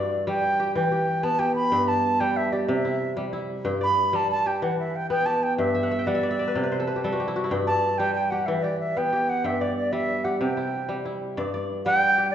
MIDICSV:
0, 0, Header, 1, 3, 480
1, 0, Start_track
1, 0, Key_signature, 1, "major"
1, 0, Tempo, 321888
1, 2565, Time_signature, 12, 3, 24, 8
1, 18415, End_track
2, 0, Start_track
2, 0, Title_t, "Flute"
2, 0, Program_c, 0, 73
2, 0, Note_on_c, 0, 74, 74
2, 377, Note_off_c, 0, 74, 0
2, 416, Note_on_c, 0, 79, 97
2, 1080, Note_off_c, 0, 79, 0
2, 1133, Note_on_c, 0, 79, 82
2, 1844, Note_on_c, 0, 81, 96
2, 1867, Note_off_c, 0, 79, 0
2, 2076, Note_on_c, 0, 79, 86
2, 2098, Note_off_c, 0, 81, 0
2, 2309, Note_off_c, 0, 79, 0
2, 2318, Note_on_c, 0, 83, 113
2, 2805, Note_on_c, 0, 81, 93
2, 2827, Note_off_c, 0, 83, 0
2, 3285, Note_on_c, 0, 79, 100
2, 3308, Note_off_c, 0, 81, 0
2, 3528, Note_on_c, 0, 76, 90
2, 3551, Note_off_c, 0, 79, 0
2, 3768, Note_on_c, 0, 74, 71
2, 3790, Note_off_c, 0, 76, 0
2, 4001, Note_on_c, 0, 76, 74
2, 4024, Note_off_c, 0, 74, 0
2, 4724, Note_off_c, 0, 76, 0
2, 5715, Note_on_c, 0, 83, 96
2, 6199, Note_on_c, 0, 81, 92
2, 6221, Note_off_c, 0, 83, 0
2, 6422, Note_off_c, 0, 81, 0
2, 6432, Note_on_c, 0, 81, 102
2, 6668, Note_on_c, 0, 79, 83
2, 6690, Note_off_c, 0, 81, 0
2, 6914, Note_on_c, 0, 78, 75
2, 6937, Note_off_c, 0, 79, 0
2, 7140, Note_off_c, 0, 78, 0
2, 7147, Note_on_c, 0, 76, 71
2, 7396, Note_on_c, 0, 79, 82
2, 7418, Note_off_c, 0, 76, 0
2, 7604, Note_off_c, 0, 79, 0
2, 7613, Note_on_c, 0, 79, 99
2, 7841, Note_on_c, 0, 81, 87
2, 7863, Note_off_c, 0, 79, 0
2, 8100, Note_on_c, 0, 79, 93
2, 8123, Note_off_c, 0, 81, 0
2, 8310, Note_off_c, 0, 79, 0
2, 8319, Note_on_c, 0, 76, 78
2, 9046, Note_on_c, 0, 74, 81
2, 9069, Note_off_c, 0, 76, 0
2, 10485, Note_off_c, 0, 74, 0
2, 11437, Note_on_c, 0, 81, 95
2, 11901, Note_on_c, 0, 79, 101
2, 11924, Note_off_c, 0, 81, 0
2, 12141, Note_off_c, 0, 79, 0
2, 12150, Note_on_c, 0, 79, 87
2, 12385, Note_on_c, 0, 78, 77
2, 12408, Note_off_c, 0, 79, 0
2, 12621, Note_on_c, 0, 76, 81
2, 12643, Note_off_c, 0, 78, 0
2, 12864, Note_on_c, 0, 74, 78
2, 12887, Note_off_c, 0, 76, 0
2, 13108, Note_off_c, 0, 74, 0
2, 13116, Note_on_c, 0, 76, 80
2, 13385, Note_on_c, 0, 79, 94
2, 13408, Note_off_c, 0, 76, 0
2, 13860, Note_on_c, 0, 78, 95
2, 13883, Note_off_c, 0, 79, 0
2, 14100, Note_on_c, 0, 76, 85
2, 14123, Note_off_c, 0, 78, 0
2, 14331, Note_on_c, 0, 74, 75
2, 14354, Note_off_c, 0, 76, 0
2, 14563, Note_off_c, 0, 74, 0
2, 14572, Note_on_c, 0, 74, 83
2, 14796, Note_on_c, 0, 76, 98
2, 14818, Note_off_c, 0, 74, 0
2, 15273, Note_on_c, 0, 78, 80
2, 15296, Note_off_c, 0, 76, 0
2, 15518, Note_off_c, 0, 78, 0
2, 15544, Note_on_c, 0, 79, 73
2, 16673, Note_off_c, 0, 79, 0
2, 17679, Note_on_c, 0, 79, 127
2, 18348, Note_off_c, 0, 79, 0
2, 18356, Note_on_c, 0, 74, 85
2, 18415, Note_off_c, 0, 74, 0
2, 18415, End_track
3, 0, Start_track
3, 0, Title_t, "Kora"
3, 0, Program_c, 1, 46
3, 0, Note_on_c, 1, 43, 68
3, 0, Note_on_c, 1, 64, 74
3, 0, Note_on_c, 1, 67, 59
3, 0, Note_on_c, 1, 69, 69
3, 0, Note_on_c, 1, 71, 65
3, 0, Note_on_c, 1, 72, 54
3, 0, Note_on_c, 1, 74, 61
3, 0, Note_on_c, 1, 79, 61
3, 250, Note_off_c, 1, 72, 0
3, 405, Note_on_c, 1, 55, 81
3, 426, Note_off_c, 1, 71, 0
3, 683, Note_off_c, 1, 69, 0
3, 883, Note_off_c, 1, 67, 0
3, 889, Note_on_c, 1, 67, 68
3, 1072, Note_off_c, 1, 79, 0
3, 1125, Note_on_c, 1, 52, 80
3, 1197, Note_off_c, 1, 55, 0
3, 1198, Note_off_c, 1, 43, 0
3, 1358, Note_off_c, 1, 67, 0
3, 1364, Note_on_c, 1, 67, 57
3, 1578, Note_off_c, 1, 74, 0
3, 1839, Note_on_c, 1, 59, 74
3, 1895, Note_off_c, 1, 64, 0
3, 2066, Note_off_c, 1, 67, 0
3, 2072, Note_on_c, 1, 67, 58
3, 2559, Note_on_c, 1, 79, 58
3, 2562, Note_on_c, 1, 43, 77
3, 2639, Note_off_c, 1, 52, 0
3, 3285, Note_on_c, 1, 55, 77
3, 3760, Note_off_c, 1, 67, 0
3, 3766, Note_on_c, 1, 67, 63
3, 3949, Note_off_c, 1, 79, 0
3, 4003, Note_on_c, 1, 48, 80
3, 4080, Note_off_c, 1, 43, 0
3, 4080, Note_off_c, 1, 55, 0
3, 4093, Note_off_c, 1, 59, 0
3, 4246, Note_on_c, 1, 64, 56
3, 4722, Note_on_c, 1, 55, 73
3, 4956, Note_off_c, 1, 64, 0
3, 4962, Note_on_c, 1, 64, 61
3, 5438, Note_on_c, 1, 43, 77
3, 5442, Note_on_c, 1, 79, 61
3, 5520, Note_off_c, 1, 48, 0
3, 5520, Note_off_c, 1, 55, 0
3, 5680, Note_on_c, 1, 74, 64
3, 5872, Note_off_c, 1, 67, 0
3, 6160, Note_on_c, 1, 55, 81
3, 6650, Note_on_c, 1, 67, 64
3, 6831, Note_off_c, 1, 79, 0
3, 6892, Note_on_c, 1, 52, 71
3, 6960, Note_off_c, 1, 43, 0
3, 6960, Note_off_c, 1, 55, 0
3, 7298, Note_off_c, 1, 64, 0
3, 7333, Note_off_c, 1, 74, 0
3, 7606, Note_on_c, 1, 59, 78
3, 7837, Note_off_c, 1, 67, 0
3, 7843, Note_on_c, 1, 67, 58
3, 8327, Note_on_c, 1, 43, 74
3, 8400, Note_off_c, 1, 52, 0
3, 8566, Note_on_c, 1, 76, 73
3, 8694, Note_on_c, 1, 78, 68
3, 8783, Note_off_c, 1, 67, 0
3, 8812, Note_off_c, 1, 76, 0
3, 8817, Note_on_c, 1, 76, 70
3, 8931, Note_on_c, 1, 79, 67
3, 9021, Note_off_c, 1, 78, 0
3, 9049, Note_on_c, 1, 78, 72
3, 9051, Note_on_c, 1, 55, 82
3, 9160, Note_off_c, 1, 76, 0
3, 9166, Note_on_c, 1, 76, 71
3, 9293, Note_on_c, 1, 74, 69
3, 9398, Note_off_c, 1, 76, 0
3, 9404, Note_on_c, 1, 76, 72
3, 9526, Note_off_c, 1, 74, 0
3, 9532, Note_on_c, 1, 74, 70
3, 9656, Note_on_c, 1, 71, 67
3, 9771, Note_off_c, 1, 74, 0
3, 9774, Note_on_c, 1, 48, 77
3, 9777, Note_on_c, 1, 74, 61
3, 9839, Note_off_c, 1, 43, 0
3, 9839, Note_off_c, 1, 55, 0
3, 9864, Note_off_c, 1, 59, 0
3, 9889, Note_off_c, 1, 71, 0
3, 9895, Note_on_c, 1, 71, 64
3, 10017, Note_on_c, 1, 72, 65
3, 10133, Note_on_c, 1, 69, 72
3, 10243, Note_off_c, 1, 71, 0
3, 10249, Note_on_c, 1, 71, 65
3, 10321, Note_off_c, 1, 79, 0
3, 10338, Note_off_c, 1, 72, 0
3, 10378, Note_on_c, 1, 67, 55
3, 10468, Note_off_c, 1, 78, 0
3, 10498, Note_off_c, 1, 69, 0
3, 10501, Note_on_c, 1, 55, 78
3, 10504, Note_on_c, 1, 69, 67
3, 10623, Note_on_c, 1, 66, 64
3, 10712, Note_off_c, 1, 67, 0
3, 10733, Note_on_c, 1, 67, 61
3, 10850, Note_on_c, 1, 64, 66
3, 10946, Note_off_c, 1, 76, 0
3, 10967, Note_off_c, 1, 66, 0
3, 10973, Note_on_c, 1, 66, 66
3, 11063, Note_off_c, 1, 67, 0
3, 11088, Note_off_c, 1, 64, 0
3, 11094, Note_on_c, 1, 64, 69
3, 11199, Note_on_c, 1, 43, 81
3, 11204, Note_on_c, 1, 79, 62
3, 11279, Note_off_c, 1, 48, 0
3, 11279, Note_off_c, 1, 55, 0
3, 11289, Note_off_c, 1, 66, 0
3, 11429, Note_off_c, 1, 74, 0
3, 11442, Note_on_c, 1, 74, 67
3, 11922, Note_on_c, 1, 55, 78
3, 12082, Note_off_c, 1, 71, 0
3, 12405, Note_on_c, 1, 67, 66
3, 12469, Note_off_c, 1, 69, 0
3, 12593, Note_off_c, 1, 79, 0
3, 12646, Note_on_c, 1, 52, 77
3, 12719, Note_off_c, 1, 43, 0
3, 12719, Note_off_c, 1, 55, 0
3, 12877, Note_off_c, 1, 67, 0
3, 12882, Note_on_c, 1, 67, 59
3, 13094, Note_off_c, 1, 74, 0
3, 13371, Note_on_c, 1, 59, 69
3, 13431, Note_off_c, 1, 64, 0
3, 13602, Note_off_c, 1, 67, 0
3, 13608, Note_on_c, 1, 67, 59
3, 14082, Note_on_c, 1, 43, 71
3, 14084, Note_on_c, 1, 79, 67
3, 14159, Note_off_c, 1, 52, 0
3, 14333, Note_on_c, 1, 74, 66
3, 14801, Note_on_c, 1, 55, 78
3, 15273, Note_off_c, 1, 67, 0
3, 15279, Note_on_c, 1, 67, 62
3, 15473, Note_off_c, 1, 79, 0
3, 15519, Note_on_c, 1, 48, 76
3, 15598, Note_off_c, 1, 43, 0
3, 15598, Note_off_c, 1, 55, 0
3, 15609, Note_off_c, 1, 59, 0
3, 15762, Note_on_c, 1, 64, 50
3, 15985, Note_off_c, 1, 74, 0
3, 16234, Note_on_c, 1, 55, 73
3, 16477, Note_off_c, 1, 64, 0
3, 16483, Note_on_c, 1, 64, 53
3, 16960, Note_on_c, 1, 43, 80
3, 16962, Note_on_c, 1, 74, 75
3, 17036, Note_off_c, 1, 48, 0
3, 17037, Note_off_c, 1, 55, 0
3, 17200, Note_off_c, 1, 74, 0
3, 17206, Note_on_c, 1, 74, 63
3, 17385, Note_off_c, 1, 67, 0
3, 17683, Note_on_c, 1, 55, 84
3, 18162, Note_on_c, 1, 67, 65
3, 18415, Note_off_c, 1, 43, 0
3, 18415, Note_off_c, 1, 55, 0
3, 18415, Note_off_c, 1, 64, 0
3, 18415, Note_off_c, 1, 67, 0
3, 18415, Note_off_c, 1, 74, 0
3, 18415, End_track
0, 0, End_of_file